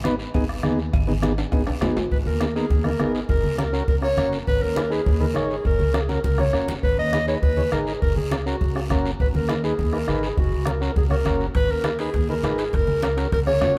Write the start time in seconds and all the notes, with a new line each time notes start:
Already playing: G#1
0.04 B3 D#4 B4, bombo rim, high conga, short guiro
0.19 short guiro
0.34 G#1 B3 D#4 G#4, bombo low, cowbell, high conga, low conga, long guiro
0.49 bombo rim
0.63 D#2 B3 D#4 G#4, bombo rim, high conga, short guiro
0.79 short guiro
0.93 G#1, bombo low, cowbell, high conga, low conga, long guiro
1.07 B3 D#4 G#4, high conga
1.22 B3 D#4 G#4, bombo rim, high conga, short guiro
1.38 high timbale, short guiro
1.52 G#1 B3 D#4 G#4, bombo low, cowbell, high conga, low conga, high timbale, long guiro
1.67 B1, bombo rim, high timbale
1.81 A#1 B3 D#4 G#4, bombo rim, high conga, low conga, low timbale, short guiro
1.97 G#1, low timbale, short guiro
2.11 G#1 B4, bombo low, high conga, long guiro
2.26 D#2 A#4, high conga
2.40 B3 D#4 G#4, bombo rim, high conga, short guiro
2.55 B3 D#4 G#4 A#4, short guiro
2.70 D#2, bombo low, high conga, low conga, long guiro
2.84 B3 D#4 G#4 A#4, bombo rim, high conga
3.00 G#1 B3 D#4 G#4, bombo rim, high conga, short guiro
3.14 G#4, short guiro
3.29 F#1 A#4, bombo low, high conga, low conga, long guiro
3.44 C#2, high conga
3.58 C#4 F#4 A#4, bombo rim, high conga, short guiro
3.73 C#4 F#4 A#4, short guiro
3.88 C#2 A#4, bombo low, high conga, low conga, long guiro
4.02 C#4 F#4 A#4 C#5, bombo rim
4.17 F#1 C#4 F#4 A#4, bombo rim, high conga, low conga, short guiro
4.33 short guiro
4.47 G#1 B4, bombo low, high conga, long guiro
4.62 D#2 A#4
4.75 D#4 G#4 B4, bombo rim, high conga, short guiro
4.90 D#4 G#4 B4, short guiro
5.06 D#2, bombo low, high conga, low conga, long guiro
5.20 D#4 G#4 A#4 B4, high conga
5.34 G#1 D#4 G#4 C#5, bombo rim, high conga, short guiro
5.50 G#4, short guiro
5.65 F#1 A#4, bombo low, high conga, long guiro
5.79 C#2, high conga
5.93 C#4 F#4 A#4, bombo rim, high conga, short guiro
6.02 G#4
6.09 C#4 F#4 A#4, high conga, short guiro
6.24 C#2 A#4, bombo low, low conga, long guiro
6.38 C#4 F#4 A#4 C#5, bombo rim, high conga
6.53 F#1 C#4 F#4 A#4, bombo rim, low conga, short guiro
6.68 low conga, short guiro
6.83 G#1 B4, bombo low, high conga, long guiro
6.98 D#2 D#5
7.13 D#4 G#4 B4, bombo rim, high conga, short guiro
7.27 D#4 G#4 B4 C#5, short guiro
7.42 D#2 B4, bombo low, high conga, low conga, long guiro
7.57 D#4 G#4 C#5, high conga
7.72 G#1 D#4 G#4 A#4, bombo rim, high conga, short guiro
7.87 G#4, short guiro
8.01 F#1 A#4, bombo low, high conga, long guiro
8.16 C#2 G#4, high conga
8.31 C#4 F#4 A#4, bombo rim, high conga, short guiro
8.46 C#4 F#4 A#4, short guiro
8.61 C#2, bombo low, high conga, low conga, long guiro
8.75 C#4 F#4 G#4, bombo rim
8.90 F#1 C#4 F#4 A#4, bombo low, bombo rim, high conga, low conga, short guiro
9.06 short guiro
9.20 G#1 B4, bombo low, high conga, long guiro
9.35 D#2 A#4, high conga
9.49 D#4 G#4 B4, bombo rim, high conga, short guiro
9.64 D#4 G#4 B4, short guiro
9.78 D#2, bombo low, high conga, low conga, long guiro
9.93 D#4 G#4 A#4 B4, bombo rim
10.07 G#1 D#4 G#4 B4, bombo rim, high conga, short guiro
10.23 G#4, short guiro
10.37 F#1 F#4, bombo low, high conga, low conga, long guiro
10.52 C#2
10.65 C#4 F#4 A#4, bombo rim, high conga, short guiro
10.81 C#4 F#4 A#4, short guiro
10.96 C#2 G#4, bombo low, high conga, low conga, long guiro
11.10 C#4 F#4 A#4 C#5, bombo rim, high conga
11.25 F#1 C#4 F#4 A#4, bombo low, bombo rim, high conga, short guiro
11.40 short guiro
11.55 G#1 B4, bombo low, high timbale, long guiro
11.69 D#2 A#4
11.84 D#4 G#4 B4, bombo rim, high conga, high timbale, short guiro
11.99 D#4 G#4 B4, high timbale, short guiro
12.14 D#2, bombo low, high conga, low conga, high timbale, long guiro
12.29 D#4 G#4 A#4 B4, high conga
12.43 G#1 D#4 G#4 B4, bombo rim, high conga, high timbale, low timbale, short guiro
12.58 G#4, high timbale, short guiro
12.73 F#1 A#4, bombo low, high conga, low conga, high timbale, long guiro
12.87 C#2, high conga
13.02 C#4 F#4 A#4, bombo rim, high conga, high timbale, short guiro
13.17 C#4 F#4 A#4, high timbale, short guiro
13.32 C#2 A#4, bombo low, high conga, low conga, high timbale, long guiro
13.47 C#4 F#4 G#4 C#5, bombo rim, high conga
13.61 F#1 C#4 F#4 C#5, bombo rim, high conga, low conga, high timbale, low timbale, short guiro